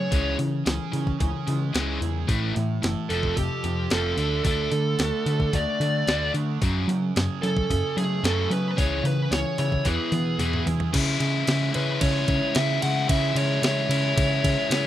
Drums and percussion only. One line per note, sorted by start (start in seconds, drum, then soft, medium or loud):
0.12 kick loud
0.12 open hi-hat medium
0.39 open hi-hat soft
0.66 snare loud
0.66 open hi-hat medium
0.93 open hi-hat soft
1.07 kick medium
1.20 kick medium
1.20 open hi-hat medium
1.48 open hi-hat medium
1.75 snare loud
1.75 open hi-hat medium
2.02 open hi-hat soft
2.29 kick loud
2.29 open hi-hat medium
2.56 snare soft
2.56 open hi-hat soft
2.83 snare loud
2.83 open hi-hat medium
3.10 open hi-hat soft
3.23 kick medium
3.37 kick medium
3.37 open hi-hat medium
3.64 open hi-hat soft
3.90 snare loud
3.90 open hi-hat medium
4.18 open hi-hat soft
4.45 kick loud
4.45 open hi-hat medium
4.72 open hi-hat soft
4.99 snare loud
4.99 open hi-hat medium
5.26 open hi-hat medium
5.40 kick medium
5.53 kick medium
5.53 open hi-hat medium
5.81 open hi-hat medium
6.08 snare loud
6.08 open hi-hat medium
6.35 open hi-hat soft
6.62 kick loud
6.62 open hi-hat medium
6.89 snare soft
6.89 open hi-hat soft
7.16 snare loud
7.16 open hi-hat medium
7.43 open hi-hat soft
7.57 kick medium
7.70 kick medium
7.70 open hi-hat medium
7.98 open hi-hat medium
8.24 snare loud
8.24 open hi-hat medium
8.51 open hi-hat soft
8.78 kick loud
8.78 open hi-hat medium
9.05 open hi-hat medium
9.32 snare loud
9.32 open hi-hat medium
9.58 open hi-hat medium
9.72 kick medium
9.85 kick medium
9.85 snare medium
9.85 open hi-hat medium
10.12 open hi-hat medium
10.12 high tom medium
10.39 open hi-hat medium
10.39 mid tom medium
10.53 mid tom medium
10.67 floor tom medium
10.67 open hi-hat soft
10.80 floor tom medium
10.94 kick loud
10.94 crash loud
10.94 ride medium
11.20 ride medium
11.47 snare medium
11.47 ride medium
11.74 ride medium
12.01 kick loud
12.01 ride medium
12.28 kick medium
12.28 ride medium
12.55 snare loud
12.55 ride medium
12.82 ride medium
13.09 kick loud
13.09 ride loud
13.36 ride medium
13.63 snare loud
13.63 ride medium
13.91 ride medium
14.17 kick loud
14.17 ride medium
14.44 kick medium
14.44 ride medium
14.71 snare loud
14.71 ride loud